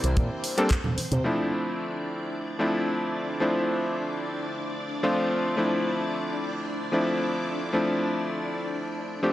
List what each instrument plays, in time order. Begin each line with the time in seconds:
Already playing: electric grand piano G3 A#3 C4 D4 E4, string machine C4 C5
0.04 picked electric bass C2, closed hi-hat, high conga
0.17 picked electric bass A#2, kick, closed hi-hat
0.44 open hi-hat
0.57 electric grand piano G3 A#3 C4 D4 A4, closed hi-hat
0.71 kick, clap, closed hi-hat
0.84 high conga, low conga
0.98 muted picked electric bass stroke, open hi-hat
1.12 picked electric bass C3, closed hi-hat, low conga
1.24 electric grand piano F3 A3 C4 D4 E4, string machine D4 D5
2.59 electric grand piano F3 A3 C4 D4 E4
3.40 electric grand piano F3 A3 C4 D4 E4
5.03 electric grand piano F3 A3 C4 D4 F4
5.57 electric grand piano F3 A3 C4 D4 E4
6.92 electric grand piano F3 A3 C4 D4 E4
7.73 electric grand piano F3 A3 C4 D4 E4
9.23 electric grand piano F3 A3 C4 D4 G4